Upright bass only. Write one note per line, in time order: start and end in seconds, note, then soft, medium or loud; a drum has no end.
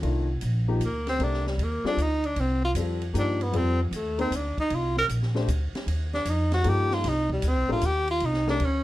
0.03 0.41 C2 medium
0.42 0.79 A#1 medium
0.80 1.18 D2 medium
1.19 1.57 C2 medium
1.58 1.83 D#2 medium
1.84 muted upright bass stroke soft
1.97 2.35 D2 loud
2.36 2.74 C2 medium
2.74 3.13 F2 medium
3.14 3.52 G2 medium
3.53 3.90 F2 medium
3.91 4.30 D#2 medium
4.31 4.55 D2 medium
4.58 muted upright bass stroke soft
4.71 5.08 C2 medium
5.09 5.47 A#1 medium
5.48 5.72 D2 loud
5.73 muted upright bass stroke soft
5.86 6.24 D#2 medium
6.25 6.63 F2 medium
6.65 7.03 G2 medium
7.04 7.42 C2 medium
7.43 7.57 D2 medium
7.57 7.69 C2 medium
7.69 7.81 A1 medium
7.82 8.19 D#2 loud
8.21 8.59 C2 medium
8.60 8.84 D2 medium